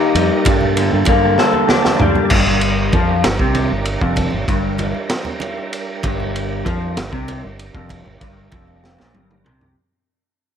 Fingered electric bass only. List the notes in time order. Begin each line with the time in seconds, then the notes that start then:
0.15 F2
0.46 G2
0.93 G2
1.07 G2
2.01 D2
2.31 G1
2.93 F2
3.25 G1
3.40 C2
3.72 G1
4.01 F1
4.32 G1
4.48 G1
6.04 G1
6.66 F2
6.98 G1
7.13 C2
7.45 G1
7.74 F1
8.07 G1
8.22 G1
8.53 F1
9.01 A#1
9.15 G1
9.45 C2